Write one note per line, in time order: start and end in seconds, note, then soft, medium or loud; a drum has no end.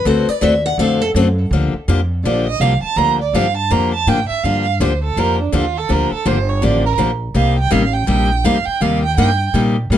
0.05 0.26 D2 loud
0.05 0.26 D3 medium
0.05 0.27 A3 medium
0.05 0.27 C4 medium
0.05 0.27 F#4 medium
0.05 0.27 A4 medium
0.05 0.29 C5 medium
0.28 0.42 D5 loud
0.28 muted upright bass stroke soft
0.41 0.77 D#2 medium
0.41 0.53 D3 loud
0.41 0.53 A3 medium
0.41 0.53 C4 medium
0.41 0.53 F#4 loud
0.41 0.53 A4 medium
0.41 0.64 E5 loud
0.66 0.79 F#5 loud
0.78 1.14 F2 medium
0.78 1.00 D3 medium
0.78 1.00 A3 medium
0.78 1.00 C4 medium
0.78 1.00 F#4 medium
0.78 1.00 A4 loud
0.78 1.00 F5 medium
1.02 1.10 A4 loud
1.15 1.50 F#2 loud
1.15 1.26 D3 medium
1.15 1.27 A3 medium
1.15 1.27 C4 medium
1.15 1.27 F#4 loud
1.15 1.27 A4 loud
1.51 1.72 D2 medium
1.51 1.73 D3 medium
1.51 1.73 F3 medium
1.51 1.73 A#3 medium
1.51 1.73 D4 medium
1.51 1.74 G4 medium
1.74 muted upright bass stroke soft
1.88 2.23 F2 medium
1.88 1.99 D3 medium
1.88 1.99 F3 medium
1.88 2.00 A#3 medium
1.88 2.00 D4 medium
1.88 2.00 G4 medium
2.24 2.59 A#1 medium
2.24 2.46 D3 medium
2.24 2.46 F3 medium
2.24 2.46 A#3 medium
2.24 2.46 D4 medium
2.24 2.46 G4 medium
2.24 2.45 D5 medium
2.47 2.62 D#5 loud
2.60 2.81 C2 medium
2.60 2.72 D3 medium
2.60 2.72 F3 medium
2.60 2.73 A#3 medium
2.60 2.73 D4 medium
2.60 2.73 G4 medium
2.60 2.82 F5 medium
2.82 2.98 A5 medium
2.82 muted upright bass stroke soft
2.96 3.32 D2 medium
2.96 3.18 D3 medium
2.96 3.19 F3 medium
2.96 3.19 A#3 medium
2.96 3.19 D4 medium
2.96 3.19 G4 medium
2.96 3.19 A#5 loud
3.21 3.36 D5 medium
3.33 3.69 G2 medium
3.33 3.45 D3 medium
3.33 3.46 F3 medium
3.33 3.46 A#3 medium
3.33 3.46 D4 medium
3.33 3.46 G4 medium
3.33 3.56 F5 medium
3.57 3.73 A5 medium
3.70 4.06 F2 medium
3.70 3.92 D3 medium
3.70 3.92 F3 medium
3.70 3.92 A#3 medium
3.70 3.92 D4 medium
3.70 3.92 G4 medium
3.70 3.93 A#5 medium
3.94 4.10 A5 medium
4.07 4.28 A2 medium
4.07 4.18 D3 medium
4.07 4.18 F3 medium
4.07 4.19 A#3 medium
4.07 4.19 D4 medium
4.07 4.19 G4 medium
4.07 4.28 G5 loud
4.29 4.45 E5 medium
4.29 muted upright bass stroke soft
4.43 4.79 G2 medium
4.43 4.65 D3 medium
4.43 4.65 F3 medium
4.43 4.65 A#3 medium
4.43 4.66 D4 medium
4.43 4.65 G4 medium
4.43 4.83 F5 medium
4.80 5.16 D2 medium
4.80 4.91 D3 medium
4.80 4.92 F3 medium
4.80 4.92 A#3 medium
4.80 4.92 D4 medium
4.80 4.92 G4 medium
4.80 5.03 C5 medium
5.04 5.20 A4 medium
5.16 5.52 F2 medium
5.16 5.38 D3 medium
5.16 5.38 F3 medium
5.16 5.38 A#3 medium
5.16 5.38 D4 medium
5.16 5.38 G4 medium
5.16 5.40 A#4 medium
5.41 5.56 D4 soft
5.52 5.88 D#2 medium
5.52 5.64 D3 medium
5.52 5.64 F3 medium
5.52 5.64 A#3 medium
5.52 5.65 D4 medium
5.52 5.79 F4 medium
5.52 5.65 G4 medium
5.78 5.93 A4 medium
5.89 6.10 D2 medium
5.89 6.10 D3 medium
5.89 6.10 F3 medium
5.89 6.11 A#3 medium
5.89 6.11 D4 medium
5.89 6.11 G4 medium
5.89 6.12 A#4 medium
6.12 6.28 A4 medium
6.12 muted upright bass stroke soft
6.25 6.61 G1 medium
6.25 6.37 D3 medium
6.25 6.37 F3 medium
6.25 6.37 A#3 medium
6.25 6.37 D4 medium
6.25 6.37 G4 medium
6.25 6.50 C5 medium
6.49 6.65 C#5 medium
6.62 6.98 A1 medium
6.62 6.83 D3 medium
6.62 6.83 F3 medium
6.62 6.84 A#3 medium
6.62 6.84 D4 medium
6.62 6.84 G4 medium
6.62 6.85 D5 medium
6.85 6.94 A#4 medium
6.98 7.34 A#1 medium
6.98 7.10 D3 medium
6.98 7.10 F3 medium
6.98 7.10 A#3 medium
6.98 7.10 D4 medium
6.98 7.10 G4 medium
7.34 7.70 C2 medium
7.34 7.56 C3 medium
7.34 7.56 G3 medium
7.34 7.56 A#3 medium
7.34 7.56 D#4 medium
7.34 7.57 G4 medium
7.34 7.56 F5 medium
7.59 7.73 G5 loud
7.71 8.07 A1 medium
7.71 7.82 C3 medium
7.71 7.83 G3 medium
7.71 7.83 A#3 medium
7.71 7.83 D#4 loud
7.71 7.83 G4 loud
7.71 7.95 F5 medium
7.93 8.08 G5 medium
8.07 8.43 A#1 medium
8.07 8.29 C3 medium
8.07 8.29 G3 medium
8.07 8.29 A#3 medium
8.07 8.29 D#4 medium
8.07 8.29 G4 medium
8.07 8.46 G5 medium
8.44 8.65 F2 medium
8.44 8.56 C3 medium
8.44 8.56 G3 medium
8.44 8.56 A#3 medium
8.44 8.56 D#4 medium
8.44 8.56 G4 loud
8.44 8.67 F5 medium
8.65 8.82 G5 loud
8.65 muted upright bass stroke soft
8.81 9.16 D#2 medium
8.81 9.02 C3 medium
8.81 9.02 G3 medium
8.81 9.03 A#3 medium
8.81 9.03 D#4 medium
8.81 9.03 G4 medium
8.81 9.03 F5 medium
9.03 9.16 G5 loud
9.17 9.53 G2 medium
9.17 9.29 C3 medium
9.17 9.29 G3 medium
9.17 9.29 A#3 medium
9.17 9.29 D#4 loud
9.17 9.30 G4 medium
9.17 9.51 G5 loud
9.54 9.89 A#2 medium
9.54 9.75 C3 medium
9.54 9.76 G3 medium
9.54 9.75 A#3 medium
9.54 9.76 D#4 medium
9.54 9.76 G4 medium
9.90 9.98 A2 medium
9.90 9.98 C3 medium
9.90 9.98 G3 medium
9.90 9.98 A#3 medium
9.90 9.98 D#4 medium
9.90 9.98 G4 medium